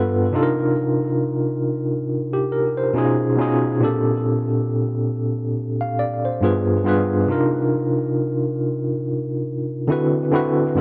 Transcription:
0.00 0.28 G2 medium
0.00 0.29 B3 medium
0.00 0.30 F4 medium
0.00 0.30 A4 medium
0.00 0.31 B4 loud
0.32 1.91 C3 medium
0.32 1.92 D4 medium
0.32 1.92 D#4 medium
0.32 1.93 F4 medium
0.36 0.42 A4 medium
0.43 1.97 A#4 loud
2.33 2.50 G4 medium
2.52 2.75 A#4 medium
2.77 3.18 C5 medium
2.94 3.33 B2 medium
2.94 3.34 C#4 medium
2.94 3.35 D#4 medium
2.94 3.35 F4 medium
2.98 3.36 G#4 loud
3.37 3.77 B2 medium
3.37 3.78 C#4 medium
3.37 3.78 D#4 medium
3.37 3.79 F4 medium
3.41 3.79 G#4 medium
3.80 5.39 A#2 loud
3.80 5.40 C4 medium
3.80 5.40 D4 medium
3.80 5.41 G4 medium
3.84 5.41 A4 loud
5.81 5.98 F5 medium
5.99 6.23 D5 medium
6.25 6.66 C5 medium
6.41 6.81 G2 medium
6.41 6.82 B3 medium
6.41 6.82 F4 medium
6.41 6.83 G#4 medium
6.45 6.83 B4 medium
6.84 7.24 G2 medium
6.84 7.25 B3 medium
6.84 7.25 F4 medium
6.84 7.26 G#4 medium
6.88 7.26 B4 loud
7.27 8.87 C3 medium
7.27 8.87 D4 medium
7.27 8.88 D#4 medium
7.27 8.88 F4 medium
7.32 8.89 A#4 medium
9.88 10.28 D3 medium
9.88 10.29 C4 medium
9.88 10.29 E4 medium
9.88 10.30 F#4 medium
9.92 10.30 B4 medium
10.31 10.72 D3 medium
10.31 10.72 C4 medium
10.31 10.73 E4 medium
10.31 10.74 F#4 medium
10.36 10.74 B4 medium
10.75 10.81 G2 medium
10.75 10.81 B3 medium
10.75 10.81 F4 medium

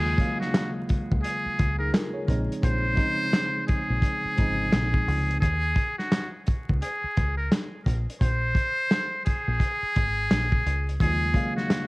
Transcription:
0.00 0.15 D#2 loud
0.00 0.15 D#2 medium
0.00 0.16 C#3 medium
0.00 0.17 F#3 medium
0.00 0.17 G#3 medium
0.00 0.17 A#3 medium
0.00 0.18 F4 medium
0.00 0.37 G#4 loud
0.17 1.46 D#2 medium
0.17 1.46 C#3 medium
0.17 1.46 F#3 medium
0.17 1.47 G#3 medium
0.17 1.47 A#3 medium
0.17 kick loud
0.17 closed hi-hat medium
0.21 1.24 F5 medium
0.40 0.72 F#4 medium
0.40 snare soft
0.54 snare loud
0.54 clap medium
0.54 closed hi-hat medium
0.89 kick loud
0.89 closed hi-hat medium
1.12 1.23 C#2 medium
1.12 kick medium
1.23 1.76 G#4 medium
1.23 closed hi-hat medium
1.46 muted fingered electric bass stroke soft
1.59 1.90 C#2 medium
1.59 kick loud
1.59 closed hi-hat medium
1.79 1.93 D#4 medium
1.79 1.92 G#4 medium
1.79 1.91 A#4 medium
1.93 2.14 F4 medium
1.93 2.13 A#4 medium
1.93 snare loud
1.93 clap medium
1.93 closed hi-hat medium
2.14 2.48 G#4 medium
2.14 2.47 C#5 medium
2.26 2.47 A#1 loud
2.26 2.91 C#3 medium
2.26 2.91 F3 medium
2.26 2.92 G#3 medium
2.26 2.92 C4 medium
2.26 kick medium
2.30 2.93 D#4 loud
2.30 closed hi-hat medium
2.52 closed hi-hat medium
2.63 2.94 A#1 loud
2.63 3.64 C5 loud
2.63 kick loud
2.63 closed hi-hat medium
2.93 4.23 C#3 medium
2.93 4.24 F3 medium
2.93 4.24 G#3 medium
2.93 4.25 C4 medium
2.97 4.25 D#4 medium
2.97 kick loud
2.97 closed hi-hat medium
3.33 snare loud
3.33 clap medium
3.33 closed hi-hat medium
3.67 5.38 G#4 medium
3.67 kick loud
3.67 closed hi-hat medium
3.90 4.01 A#1 medium
4.02 kick medium
4.02 closed hi-hat medium
4.25 muted fingered electric bass stroke soft
4.35 4.69 G#1 medium
4.35 4.44 C3 medium
4.35 5.33 F3 medium
4.35 5.33 G#3 medium
4.35 5.34 C4 medium
4.35 kick loud
4.35 closed hi-hat medium
4.40 5.36 C#3 medium
4.40 5.34 D#4 medium
4.72 5.03 A#1 loud
4.72 snare loud
4.72 clap medium
4.72 closed hi-hat medium
4.94 kick loud
5.08 5.38 C#2 medium
5.08 open hi-hat medium
5.31 closed hi-hat medium
5.40 5.73 D#2 loud
5.40 5.94 G#4 loud
5.40 kick loud
5.40 closed hi-hat medium
5.76 kick loud
5.76 closed hi-hat medium
5.98 6.30 F#4 medium
5.98 snare soft
6.12 snare loud
6.12 clap medium
6.12 closed hi-hat medium
6.47 kick loud
6.47 closed hi-hat medium
6.69 6.81 C#2 medium
6.69 kick loud
6.82 7.35 G#4 medium
6.82 closed hi-hat medium
7.04 muted fingered electric bass stroke soft
7.17 7.48 C#2 medium
7.17 kick loud
7.17 closed hi-hat medium
7.37 7.50 A#4 medium
7.52 snare loud
7.52 clap medium
7.52 closed hi-hat medium
7.86 8.05 A#1 loud
7.86 kick medium
7.86 closed hi-hat medium
8.10 closed hi-hat medium
8.21 8.52 A#1 loud
8.21 9.22 C5 loud
8.21 kick loud
8.21 closed hi-hat medium
8.55 kick loud
8.55 closed hi-hat medium
8.91 snare loud
8.91 clap medium
8.91 closed hi-hat medium
9.25 10.96 G#4 loud
9.25 kick medium
9.25 closed hi-hat medium
9.48 9.59 A#1 medium
9.60 kick medium
9.60 closed hi-hat medium
9.83 muted fingered electric bass stroke soft
9.96 10.27 G#1 medium
9.96 kick loud
9.96 closed hi-hat medium
10.31 10.62 A#1 medium
10.31 snare loud
10.31 clap medium
10.31 closed hi-hat medium
10.52 kick loud
10.66 10.96 C#2 medium
10.66 closed hi-hat medium
10.89 closed hi-hat medium
10.99 11.31 D#2 medium
10.99 11.31 D#2 loud
10.99 11.32 C#3 medium
10.99 11.32 F#3 medium
10.99 11.33 G#3 medium
10.99 11.33 A#3 medium
10.99 11.54 G#4 loud
10.99 kick loud
10.99 closed hi-hat medium
11.04 11.34 F4 medium
11.32 11.87 D#2 medium
11.32 11.87 C#3 medium
11.32 11.87 F#3 medium
11.32 11.87 G#3 medium
11.32 11.87 A#3 medium
11.32 kick loud
11.32 closed hi-hat medium
11.36 11.87 F5 medium
11.56 11.87 F#4 medium
11.56 snare soft
11.70 snare loud
11.70 clap medium
11.70 closed hi-hat medium

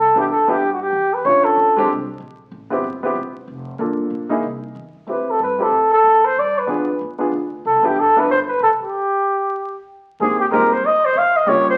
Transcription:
0.00 0.27 C2 medium
0.00 0.16 A4 medium
0.15 0.27 B3 medium
0.15 0.27 D4 soft
0.15 0.28 E4 soft
0.15 0.28 G4 medium
0.20 0.25 G4 medium
0.28 0.59 E2 medium
0.28 0.52 A4 medium
0.48 0.59 B3 medium
0.48 0.60 D4 medium
0.48 0.60 E4 medium
0.48 0.60 G4 medium
0.48 0.72 G4 medium
0.60 0.91 G2 medium
0.73 0.83 F#4 medium
0.81 1.15 G4 medium
0.93 1.24 E2 medium
1.14 1.27 B4 medium
1.24 1.56 B1 medium
1.24 1.72 A3 soft
1.24 1.73 C#4 soft
1.24 1.73 D4 soft
1.24 1.73 F4 medium
1.24 1.46 C#5 loud
1.45 1.89 A4 medium
1.57 1.88 D2 medium
1.76 1.88 G#3 medium
1.76 1.88 C4 medium
1.76 1.88 D4 medium
1.76 1.89 G4 medium
1.89 2.19 C2 medium
2.20 2.51 A#1 medium
2.51 2.83 A1 medium
2.70 2.82 B3 medium
2.70 2.83 C4 medium
2.70 2.83 E4 medium
2.70 2.84 G4 medium
2.84 3.15 G1 medium
3.03 3.15 B3 medium
3.03 3.15 C4 medium
3.03 3.15 E4 medium
3.03 3.16 G4 medium
3.15 3.47 E1 medium
3.48 3.78 F1 medium
3.79 4.10 G1 medium
3.79 4.27 A#3 medium
3.79 4.28 D4 soft
3.79 4.28 F4 soft
3.79 4.28 A4 medium
4.10 4.42 A#1 medium
4.29 4.42 A#3 medium
4.29 4.42 D#4 medium
4.29 4.43 E4 medium
4.29 4.43 G#4 medium
4.43 4.74 C2 medium
4.75 4.94 E2 medium
4.95 muted upright bass stroke soft
5.07 5.39 F2 medium
5.07 5.55 A3 soft
5.07 5.56 C4 soft
5.07 5.56 E4 soft
5.07 5.56 G4 soft
5.07 5.32 B4 medium
5.31 5.42 A4 medium
5.40 5.71 G2 medium
5.40 5.64 B4 medium
5.58 5.70 A3 medium
5.58 5.71 C4 medium
5.58 5.71 E4 medium
5.58 5.71 G4 medium
5.63 5.92 A4 medium
5.71 6.03 A2 medium
5.93 6.27 A4 medium
6.04 6.35 F2 medium
6.25 6.41 C5 medium
6.36 6.67 G2 medium
6.36 6.60 D5 medium
6.59 7.02 B4 medium
6.67 6.99 F2 medium
6.67 6.85 B3 medium
6.67 6.86 D4 medium
6.67 6.86 F4 soft
6.67 6.86 G#4 medium
7.01 7.31 E2 medium
7.18 7.30 B3 medium
7.18 7.30 D4 medium
7.18 7.31 F4 soft
7.18 7.31 G#4 medium
7.32 7.63 D2 medium
7.65 7.76 C2 medium
7.65 7.87 A4 medium
7.76 7.85 B1 soft
7.83 7.95 G1 medium
7.83 7.94 B3 medium
7.83 7.95 D4 medium
7.83 7.95 E4 medium
7.83 7.95 G4 medium
7.83 8.01 G4 medium
7.96 8.27 G#1 medium
8.00 8.21 A4 medium
8.16 8.27 B3 medium
8.16 8.27 D4 medium
8.16 8.28 E4 medium
8.16 8.28 A4 medium
8.16 8.30 B4 medium
8.27 8.59 G1 medium
8.27 8.39 C5 medium
8.48 8.59 B4 medium
8.60 8.78 B1 medium
8.60 8.71 A4 medium
8.80 9.85 G4 medium
8.80 muted upright bass stroke soft
10.20 10.51 G#2 medium
10.20 10.38 G#3 medium
10.20 10.38 A#3 soft
10.20 10.38 C4 soft
10.20 10.38 D#4 soft
10.20 10.39 G4 medium
10.20 10.39 G#4 medium
10.40 10.46 G4 medium
10.51 10.82 G2 medium
10.51 10.69 G#3 medium
10.51 10.69 A#3 medium
10.51 10.69 C4 medium
10.51 10.70 D#4 medium
10.51 10.70 G4 medium
10.51 10.75 A#4 medium
10.73 10.88 C5 medium
10.84 11.15 F2 medium
10.84 11.07 D#5 loud
11.05 11.20 C5 medium
11.15 11.46 D#2 medium
11.15 11.38 F5 medium
11.37 11.50 D#5 medium
11.46 11.78 C#2 medium
11.46 11.78 G3 medium
11.46 11.78 A#3 medium
11.46 11.78 C#4 medium
11.46 11.78 F4 medium
11.46 11.78 G4 medium
11.46 11.67 C#5 loud
11.70 11.78 C5 loud

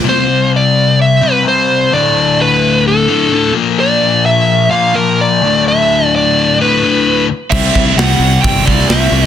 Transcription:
0.04 1.20 C3 loud
0.04 1.21 G3 medium
0.04 1.20 C4 loud
0.09 0.51 C5 medium
0.56 0.98 D5 loud
1.02 1.24 E5 loud
1.21 1.42 C3 medium
1.21 1.44 G3 medium
1.21 1.44 C4 loud
1.21 1.45 B4 medium
1.43 1.90 C3 loud
1.43 1.91 G3 loud
1.43 1.91 C4 medium
1.48 1.95 C5 loud
1.91 3.07 D2 medium
1.91 3.07 A2 loud
1.91 3.07 D3 loud
1.91 2.41 D5 loud
2.41 2.84 B4 loud
2.88 3.52 A4 medium
3.08 3.29 D2 medium
3.08 3.31 A2 medium
3.08 3.30 D3 loud
3.30 3.52 D2 medium
3.30 3.53 A2 medium
3.30 3.54 D3 loud
3.52 4.69 A#2 medium
3.52 4.70 F3 loud
3.52 4.70 A#3 loud
3.80 4.25 D5 loud
4.26 4.70 E5 loud
4.70 4.93 A#2 medium
4.70 4.93 F3 medium
4.70 4.92 A#3 medium
4.70 4.95 F5 loud
4.94 5.41 A#2 medium
4.94 5.40 F3 medium
4.94 5.40 A#3 loud
4.94 5.19 A#4 medium
5.21 5.63 D5 medium
5.41 6.57 D2 medium
5.41 6.58 A2 loud
5.41 6.58 D3 loud
5.68 6.15 E5 loud
6.16 6.57 D5 loud
6.59 6.80 D2 medium
6.59 6.81 A2 medium
6.59 6.81 D3 medium
6.59 7.26 B4 medium
6.82 7.29 D2 medium
6.82 7.28 A2 medium
6.82 7.27 D3 medium
7.50 7.68 C2 loud
7.50 8.41 C3 medium
7.50 8.67 C3 medium
7.50 8.42 G3 loud
7.50 8.66 G3 medium
7.50 8.43 C4 medium
7.50 8.43 E4 medium
7.50 8.43 G4 loud
7.50 8.44 C5 loud
7.50 7.94 E5 loud
7.50 kick loud
7.50 crash loud
7.55 8.65 C4 loud
7.75 7.92 C2 medium
7.75 kick medium
7.96 8.14 C2 medium
7.96 8.42 F#5 loud
7.96 snare loud
7.96 open hi-hat medium
8.19 8.37 C2 loud
8.42 8.61 G1 loud
8.42 9.26 C3 medium
8.42 9.26 G3 medium
8.42 9.26 C4 medium
8.42 9.26 E4 medium
8.42 9.26 G4 medium
8.42 9.26 C5 medium
8.42 8.67 G5 medium
8.42 kick loud
8.42 open hi-hat medium
8.65 8.84 C2 medium
8.65 8.89 C3 medium
8.65 8.90 G3 medium
8.65 8.89 C4 medium
8.65 8.89 D5 loud
8.65 kick medium
8.79 snare soft
8.89 9.07 C2 medium
8.89 9.26 C3 medium
8.89 9.26 G3 medium
8.89 9.26 C4 medium
8.89 9.26 E5 loud
8.89 snare loud
8.89 open hi-hat medium
9.12 9.26 C2 medium

